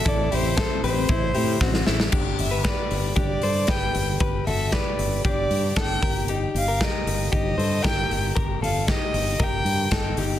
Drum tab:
CC |----------------|x---------------|----------------|----------------|
HH |x-o-x-o-x-o-----|--o-x-o-x-o-x-o-|x-o-x-o-x-o-x-o-|x-o-x-o-x-o-x-o-|
SD |----o-------oooo|----o-------o---|----o-------o---|----o-------o---|
BD |o---o---o---o---|o---o---o---o---|o---o---o---o-o-|----o---o---o---|

CC |----------------|
HH |x-o-x-o-x-o-x-o-|
SD |----o-------o---|
BD |o---o---o---o---|